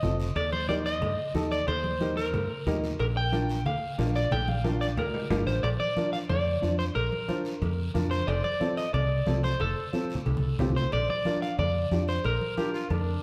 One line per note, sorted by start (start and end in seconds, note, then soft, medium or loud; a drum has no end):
0.00 0.29 F1 medium
0.00 0.26 C4 medium
0.00 0.26 F4 medium
0.00 0.26 A4 medium
0.00 0.16 D#5 medium
0.00 high conga medium
0.00 low conga medium
0.00 short guiro medium
0.20 short guiro medium
0.36 1.02 D#2 loud
0.36 0.51 D5 loud
0.36 cowbell loud
0.36 long guiro medium
0.53 0.68 C5 medium
0.53 high conga medium
0.69 0.92 D#4 medium
0.69 0.92 G4 medium
0.69 0.92 A#4 medium
0.69 0.74 D5 medium
0.69 high conga medium
0.69 short guiro medium
0.86 1.48 D#5 medium
0.86 short guiro medium
1.02 1.15 G2 medium
1.02 cowbell medium
1.02 low conga medium
1.02 long guiro medium
1.34 1.61 D#2 loud
1.34 1.58 D#4 medium
1.34 1.58 G4 medium
1.34 1.58 A4 medium
1.34 high conga medium
1.34 short guiro medium
1.51 1.67 D5 medium
1.51 short guiro medium
1.68 2.34 D#2 loud
1.68 2.14 C5 loud
1.68 cowbell loud
1.68 low conga medium
1.68 long guiro medium
1.84 high conga medium
2.01 2.24 D#4 medium
2.01 2.24 G4 medium
2.01 2.24 A#4 medium
2.01 high conga medium
2.01 short guiro medium
2.17 2.79 A#4 medium
2.17 short guiro medium
2.34 2.47 G2 loud
2.34 cowbell medium
2.34 low conga medium
2.34 long guiro medium
2.67 2.93 D#2 loud
2.67 2.90 D#4 medium
2.67 2.90 G4 medium
2.67 2.90 A#4 medium
2.67 high conga medium
2.67 low conga medium
2.67 low timbale medium
2.67 short guiro medium
2.84 short guiro medium
2.99 3.66 A#1 loud
2.99 3.05 A#4 loud
2.99 cowbell loud
2.99 long guiro medium
3.17 3.63 G5 loud
3.32 3.56 D4 medium
3.32 3.56 F4 medium
3.32 3.56 A#4 medium
3.32 high conga medium
3.32 short guiro medium
3.49 short guiro medium
3.66 3.79 D2 loud
3.66 4.17 F5 medium
3.66 cowbell medium
3.66 low conga medium
3.66 long guiro medium
3.98 4.25 A#1 loud
3.98 4.22 D4 medium
3.98 4.22 F4 medium
3.98 4.22 A#4 medium
3.98 high conga medium
3.98 low timbale medium
3.98 short guiro medium
4.15 4.32 D5 medium
4.15 short guiro medium
4.31 4.98 A#1 loud
4.31 4.49 G5 loud
4.31 cowbell loud
4.31 low conga medium
4.31 long guiro medium
4.48 4.81 F5 loud
4.48 high conga medium
4.64 4.87 D4 medium
4.64 4.88 F4 medium
4.64 4.88 A#4 medium
4.64 high conga loud
4.64 high timbale medium
4.64 short guiro medium
4.81 4.86 D5 medium
4.81 short guiro medium
4.97 5.11 D2 loud
4.97 5.44 A#4 medium
4.97 cowbell medium
4.97 low conga medium
4.97 low timbale medium
4.97 long guiro medium
5.14 low timbale medium
5.30 5.45 G1 medium
5.30 5.54 D4 medium
5.30 5.54 F4 medium
5.30 5.54 A#4 medium
5.30 high conga medium
5.30 low conga medium
5.30 low timbale loud
5.30 short guiro medium
5.47 5.62 A1 medium
5.47 5.62 C5 loud
5.47 low timbale medium
5.47 short guiro medium
5.63 5.77 A#1 loud
5.63 5.68 D5 loud
5.63 cowbell loud
5.63 long guiro medium
5.80 6.12 D5 loud
5.80 high conga medium
5.96 6.20 D4 medium
5.96 6.20 F4 medium
5.96 6.20 A#4 medium
5.96 high conga medium
5.96 short guiro medium
6.13 6.18 F5 medium
6.13 short guiro medium
6.29 6.56 F2 loud
6.29 6.78 D5 medium
6.29 cowbell medium
6.29 low conga medium
6.29 long guiro medium
6.62 6.89 F2 medium
6.62 6.85 D4 medium
6.62 6.86 F4 medium
6.62 6.86 C5 medium
6.62 high conga medium
6.62 short guiro medium
6.79 6.84 C5 loud
6.79 short guiro medium
6.95 7.09 A#1 loud
6.95 7.91 A#4 loud
6.95 cowbell medium
6.95 long guiro medium
7.12 high conga medium
7.28 7.52 D4 medium
7.28 7.52 F4 medium
7.28 7.52 C5 medium
7.28 high conga medium
7.28 short guiro medium
7.45 short guiro medium
7.61 7.88 F2 loud
7.61 cowbell medium
7.61 low conga medium
7.61 long guiro medium
7.94 8.21 F2 medium
7.94 8.18 D4 medium
7.94 8.18 F4 medium
7.94 8.18 A#4 medium
7.94 high conga medium
7.94 low conga medium
7.94 short guiro medium
8.11 8.27 C5 loud
8.11 short guiro medium
8.27 8.41 F1 loud
8.27 8.43 D5 loud
8.27 cowbell loud
8.27 long guiro medium
8.44 8.77 D5 loud
8.44 high conga medium
8.60 8.84 C4 medium
8.60 8.84 F4 medium
8.60 8.84 A4 medium
8.60 high conga medium
8.60 short guiro medium
8.77 8.93 D#5 medium
8.77 short guiro medium
8.94 9.20 C2 loud
8.94 9.44 D5 medium
8.94 cowbell medium
8.94 low conga medium
9.26 9.54 C2 medium
9.26 9.50 C4 medium
9.26 9.50 F4 medium
9.26 9.50 A4 medium
9.26 high conga medium
9.26 low timbale medium
9.26 short guiro medium
9.44 9.61 C5 medium
9.44 short guiro medium
9.60 9.73 F1 medium
9.60 10.56 A4 loud
9.60 cowbell medium
9.60 low conga medium
9.60 long guiro medium
9.93 10.16 C4 medium
9.93 10.16 F4 medium
9.93 10.17 A4 medium
9.93 high conga medium
9.93 short guiro medium
10.10 short guiro medium
10.15 low conga medium
10.26 10.53 C2 loud
10.26 cowbell medium
10.26 low conga medium
10.26 long guiro medium
10.37 low conga medium
10.59 10.86 C2 medium
10.59 10.82 C4 medium
10.59 10.83 F4 medium
10.59 10.83 G4 medium
10.59 low conga loud
10.59 low timbale medium
10.59 short guiro medium
10.70 low conga medium
10.76 10.93 C5 medium
10.76 short guiro medium
10.81 low conga medium
10.92 11.06 A#1 loud
10.92 11.09 D5 loud
10.92 cowbell loud
10.92 long guiro medium
11.09 11.42 D5 loud
11.09 high conga medium
11.25 11.49 D4 medium
11.25 11.49 F4 medium
11.25 11.49 A#4 medium
11.25 high conga medium
11.25 short guiro medium
11.42 11.59 F5 medium
11.42 short guiro medium
11.58 11.85 F2 loud
11.58 12.08 D5 medium
11.58 cowbell medium
11.58 low conga medium
11.58 long guiro medium
11.91 12.18 F2 medium
11.91 12.15 D4 medium
11.91 12.15 F4 medium
11.91 12.15 G4 medium
11.91 high conga medium
11.91 short guiro medium
12.08 12.24 C5 medium
12.08 short guiro medium
12.24 12.38 A#1 loud
12.24 13.20 A#4 loud
12.24 cowbell medium
12.24 long guiro medium
12.41 high conga medium
12.57 12.81 D4 medium
12.57 12.81 F4 medium
12.57 12.73 G4 medium
12.57 12.81 A#4 medium
12.57 high conga medium
12.57 short guiro medium
12.74 12.89 F4 loud
12.74 short guiro medium
12.90 13.17 F2 loud
12.90 13.23 D4 medium
12.90 cowbell medium
12.90 low conga medium
12.90 long guiro medium